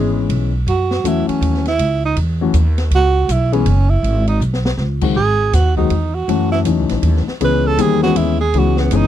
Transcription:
Already playing: upright bass G#1, grand piano E3 G#3 B3 C#4 G#4, tenor saxophone G#3
0.29 upright bass B1, kick, ride
0.66 upright bass F#2, tenor saxophone F#4, kick, ride
0.91 snare
1.04 upright bass E2, grand piano E3 F#3 A3 C#4 F#4, tenor saxophone E4, kick, hi-hat pedal, ride
1.29 tenor saxophone C#4, muted upright bass stroke, ride
1.41 upright bass D#2, kick, ride
1.54 snare
1.65 tenor saxophone E4, snare, ride
1.78 upright bass C#2, kick, ride
2.05 tenor saxophone D#4
2.16 upright bass E2, kick, ride
2.41 grand piano E3 F#3 A3 C#4 F#4
2.54 upright bass D#2, kick, hi-hat pedal, ride
2.78 snare, ride
2.91 upright bass C#2, kick, ride
2.95 tenor saxophone F#4
3.29 upright bass B1, tenor saxophone E4, kick, hi-hat pedal, ride
3.52 grand piano E3 G#3 B3 C#4 G#4, tenor saxophone C#4, ride
3.66 upright bass F#1, kick, ride
3.90 tenor saxophone E4
4.03 upright bass G#1, kick, ride
4.27 tenor saxophone D#4, ride
4.40 upright bass B1, hi-hat pedal
4.53 snare
4.65 snare
4.77 upright bass C#2, snare
5.01 grand piano D#3 F#3 G#3 C4 F#4, kick, crash
5.15 upright bass G#1, tenor saxophone G#4
5.53 upright bass D#2, tenor saxophone F#4, kick, snare, hi-hat pedal, ride
5.77 grand piano D#3 F#3 G#3 C4 F#4, tenor saxophone D#4, kick
5.90 upright bass E2, kick, ride
6.15 tenor saxophone F#4
6.28 upright bass F#2, grand piano E3 F#3 A3 C#4 F#4, kick, ride
6.52 tenor saxophone E4, snare
6.65 upright bass E2, grand piano E3 F#3 A3 C#4 D#4, kick, hi-hat pedal, ride
6.79 upright bass C#2
6.89 upright bass A1, snare, ride
7.02 upright bass D#2, kick, ride
7.16 snare
7.27 muted upright bass stroke, snare
7.41 upright bass C#2, grand piano E3 G#3 B3 C#4 G#4, tenor saxophone B4, kick, ride
7.67 tenor saxophone A4
7.78 upright bass E2, grand piano D#3 G3 A#3 C4 G4, tenor saxophone G#4, kick, hi-hat pedal, ride
8.02 grand piano E3 G#3 B3 C#4 G#4, tenor saxophone F#4, snare
8.16 upright bass D#2, tenor saxophone E4, kick, ride
8.41 tenor saxophone G#4
8.54 upright bass C#2, grand piano E3 G#3 B3 C#4 G#4, kick, ride
8.59 tenor saxophone F#4
8.77 tenor saxophone B3, snare
8.91 upright bass F#1, grand piano E3 G#3 B3 C#4 G#4, kick, hi-hat pedal, ride
8.96 tenor saxophone D#4

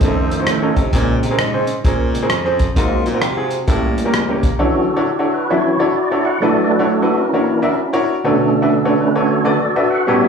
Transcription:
0.00 baritone saxophone F2, tonewheel organ D#3 A3 C#4 D#4 A4 C5, grand piano C#4 D#4 F4 A4, kick, closed hi-hat
0.31 closed hi-hat
0.39 grand piano C#4 D#4 F4 C5
0.46 baritone saxophone A2, cross-stick, closed hi-hat
0.62 grand piano C#4 D#4 F4 A4
0.76 baritone saxophone C3, kick, closed hi-hat
0.92 baritone saxophone A#2, grand piano A#2 C4 C#4 G#4 A#4, tonewheel organ C#3 G#3 C4, kick, closed hi-hat
1.23 baritone saxophone C3, closed hi-hat
1.31 grand piano C4 C#4 G#4 A#4
1.39 baritone saxophone G#2, cross-stick, closed hi-hat
1.54 grand piano C4 C#4 G#4 C5
1.67 closed hi-hat
1.84 baritone saxophone A#2, grand piano C4 C#4 G#4 A#4, kick, closed hi-hat
2.13 tonewheel organ C#3 G#3 C4, closed hi-hat
2.22 grand piano C4 C#4 G#4 A#4
2.30 baritone saxophone F2, cross-stick, closed hi-hat
2.45 grand piano C4 C#4 G#4 C5, cross-stick
2.59 kick, cross-stick, closed hi-hat
2.76 baritone saxophone G#2, grand piano G#2 C4 F4 F#4 A#4, tonewheel organ F#3 A#3 C4 F4, kick, closed hi-hat
3.06 baritone saxophone A#2, closed hi-hat
3.14 grand piano C4 F4 F#4 A#4
3.22 baritone saxophone C3, cross-stick, closed hi-hat
3.37 grand piano C4 F4 F#4 G#4
3.50 closed hi-hat
3.67 grand piano A2 A#3 C#4 G4 A4, baritone saxophone A2, tonewheel organ G3 A#3 C#4, kick, closed hi-hat
3.98 closed hi-hat
4.05 grand piano A#3 C#4 G4 A#4
4.13 baritone saxophone C#2, cross-stick, closed hi-hat
4.29 grand piano A#3 C#4 G4 A#4
4.43 kick, closed hi-hat
4.59 grand piano D3 D4 E4 F#4 A4 C#5, tonewheel organ E3 F#3 C#4 F#4 A4
4.96 grand piano D4 E4 F#4 A4 C#5, tonewheel organ B4
5.03 tonewheel organ A4
5.12 tonewheel organ G4
5.19 grand piano D4 E4 F#4 A4 C#5, tonewheel organ A4
5.34 tonewheel organ B4
5.50 tonewheel organ E3 F#3 C#4 E4 F#4 C#5, grand piano D4 E4 F#4 A4 E5
5.79 grand piano D4 E4 F#4 A4 C#5, tonewheel organ D5
5.96 tonewheel organ D5
6.11 grand piano D4 E4 F#4 A4 C#5
6.25 tonewheel organ F#5
6.40 grand piano E3 D4 E4 F#4 A4 B4, tonewheel organ F#3 A3 D4 F#4 A4 D5
6.71 tonewheel organ B4
6.79 grand piano D4 E4 F#4 A4 C#5
6.87 tonewheel organ A4
7.02 grand piano D4 E4 F#4 A4 B4
7.17 tonewheel organ C#4 E4 A#4
7.33 tonewheel organ E3 A#3 D4, grand piano D4 E4 F#4 A#4 C#5
7.62 grand piano D4 E4 F#4 A#4 E5
7.93 grand piano D4 E4 F#4 A#4 C#5
8.24 grand piano B2 D4 F#4 A4 B4 C#5, tonewheel organ D3 A3 C#4 D4 A4
8.62 grand piano D4 F#4 A4 B4 E5
8.72 tonewheel organ A4
8.85 grand piano D4 F#4 A4 B4 C#5
9.00 tonewheel organ B4
9.15 grand piano D4 F#4 A4 B4 C#5, tonewheel organ F#4 A4 C#5
9.44 tonewheel organ D3 A3 C#4 D5, grand piano D4 F#4 A4 B4 D5
9.62 tonewheel organ D5
9.76 grand piano D4 F#4 A4 B4 E5
9.90 tonewheel organ F#5
10.07 grand piano A2 C#4 F#4 G4 A4 B4, tonewheel organ G3 B3 C#4 F#4 G4 C#5 E5

